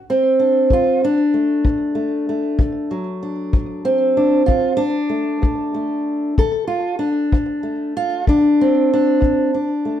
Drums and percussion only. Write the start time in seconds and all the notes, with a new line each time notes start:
0.70 kick
1.65 kick
2.59 kick
3.53 kick
4.48 kick
5.43 kick
6.38 kick
7.32 kick
8.27 kick
9.22 kick